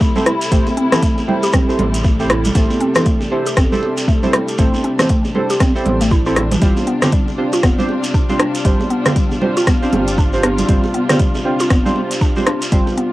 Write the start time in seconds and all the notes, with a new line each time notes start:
Already playing: C3 G3 A3 C4 E4 G4 A4 C5
0.01 A3, kick, muted conga, shekere
0.16 C4 E4 G4 A4 C5, low conga, shekere
0.26 E4, cross-stick, closed hi-hat, muted conga
0.41 closed hi-hat, shekere
0.51 A1 A3 C4 E4 G4 A4 C5, kick, closed hi-hat, shekere
0.67 muted conga, high conga, shekere
0.77 C4, closed hi-hat
0.92 E3 C4 E4 G4 A4 C5, cross-stick, closed hi-hat, muted conga, high conga, shekere
1.02 A3, kick, closed hi-hat, shekere
1.18 muted conga, shekere
1.28 C4 E4 G4 A4 C5, low conga
1.43 G4, closed hi-hat, shekere
1.52 C4, kick, cross-stick, closed hi-hat, muted conga, high conga, low conga, shekere
1.68 C4 E4 G4 A4 C5, shekere
1.79 A1, closed hi-hat, muted conga, high conga, low conga
1.94 closed hi-hat, shekere
2.04 A3, kick, muted conga, shekere
2.19 C4 E4 G4 A4 C5, shekere
2.30 E4, cross-stick, closed hi-hat, muted conga, high conga
2.45 closed hi-hat, low conga, shekere
2.55 A1 A3 C4 D4 E4 G4 A4 C5, kick, closed hi-hat, shekere
2.70 muted conga, high conga, shekere
2.80 C4, closed hi-hat
2.95 E3 C4 E4 G4 A4 C5, cross-stick, closed hi-hat, muted conga, high conga, shekere
3.05 A3, kick, closed hi-hat, shekere
3.21 muted conga, shekere
3.31 C4 E4 G4 A4 C5
3.46 G4, closed hi-hat, shekere
3.56 G1 C4, kick, cross-stick, closed hi-hat, muted conga, high conga, shekere
3.72 C4 E4 G4 A4 C5, low conga, shekere
3.83 muted conga
3.97 closed hi-hat, shekere
4.08 A3, kick, muted conga, shekere
4.23 C4 E4 G4 A4 C5, low conga, shekere
4.33 E4, cross-stick, closed hi-hat, muted conga
4.48 closed hi-hat, shekere
4.58 A1 A3 C4 E4 G4 A4 C5, kick, closed hi-hat, shekere
4.74 muted conga, high conga, shekere
4.84 C4, closed hi-hat
4.99 E3 C4 E4 G4 A4 C5, cross-stick, closed hi-hat, muted conga, high conga, shekere
5.09 A3, kick, closed hi-hat, shekere
5.25 muted conga, shekere
5.35 C4 E4 G4 A4 C5, low conga
5.50 G4, closed hi-hat, shekere
5.60 C4, kick, cross-stick, closed hi-hat, muted conga, high conga, low conga, shekere
5.75 C4 E4 G4 A4 C5, shekere
5.85 A1, closed hi-hat, muted conga, high conga, low conga
6.01 A3, closed hi-hat, shekere
6.11 E4, kick, muted conga, shekere
6.26 C4 E4 G4 A4 C5, shekere
6.36 E4, cross-stick, closed hi-hat, muted conga, high conga
6.52 E3, closed hi-hat, low conga, shekere
6.62 G1 C3 G3 C4 D4 F4 G4 C5, kick, closed hi-hat, shekere
6.77 muted conga, high conga, shekere
6.87 B3, closed hi-hat
7.02 D3 C4 D4 F4 G4 C5, cross-stick, closed hi-hat, muted conga, high conga, shekere
7.12 G3, kick, closed hi-hat, shekere
7.28 muted conga, shekere
7.38 C4 D4 F4 G4 C5
7.53 F4, closed hi-hat, shekere
7.63 F1 B3, kick, cross-stick, closed hi-hat, muted conga, high conga, shekere
7.79 C4 D4 F4 G4 C5, low conga, shekere
7.89 muted conga
8.04 closed hi-hat, shekere
8.14 D4, kick, muted conga, shekere
8.29 C4 D4 F4 G4 C5, low conga, shekere
8.40 D4, cross-stick, closed hi-hat, muted conga
8.55 closed hi-hat, shekere
8.65 G1 G3 C4 D4 F4 G4 C5, kick, closed hi-hat, shekere
8.80 muted conga, high conga, shekere
8.91 B3, closed hi-hat
9.06 D3 C4 D4 F4 G4 C5, cross-stick, closed hi-hat, muted conga, high conga, shekere
9.16 G3, kick, closed hi-hat, shekere
9.31 muted conga, shekere
9.41 C4 D4 F4 G4 C5, low conga
9.57 F4, closed hi-hat, shekere
9.66 B3, kick, cross-stick, closed hi-hat, muted conga, high conga, low conga, shekere
9.82 C4 D4 F4 G4 C5, shekere
9.92 G1, closed hi-hat, muted conga, high conga, low conga
10.07 closed hi-hat, shekere
10.18 D4, kick, muted conga, shekere
10.33 C4 D4 F4 G4 C5, shekere
10.43 D4, cross-stick, closed hi-hat, muted conga, high conga
10.58 closed hi-hat, low conga, shekere
10.69 G1 G3 C4 D4 F4 G4 C5, kick, closed hi-hat, shekere
10.84 muted conga, high conga, shekere
10.94 B3, closed hi-hat
11.09 D3 C4 D4 F4 G4 C5, cross-stick, closed hi-hat, muted conga, high conga, shekere
11.19 G3, kick, closed hi-hat, shekere
11.35 muted conga, shekere
11.45 C4 D4 F4 G4 C5
11.60 F4, closed hi-hat, shekere
11.70 F1 B3, kick, cross-stick, closed hi-hat, muted conga, high conga, shekere
11.85 C4 D4 F4 G4 C5, low conga, shekere
11.96 muted conga
12.11 closed hi-hat, shekere
12.21 D4, kick, muted conga, shekere
12.36 C4 D4 F4 G4 C5, low conga, shekere
12.47 D4, cross-stick, closed hi-hat, muted conga
12.62 closed hi-hat, shekere
12.72 G1 G3 C4 D4 F4 G4 C5, kick, closed hi-hat, shekere
12.87 muted conga, high conga, shekere
12.97 B3, closed hi-hat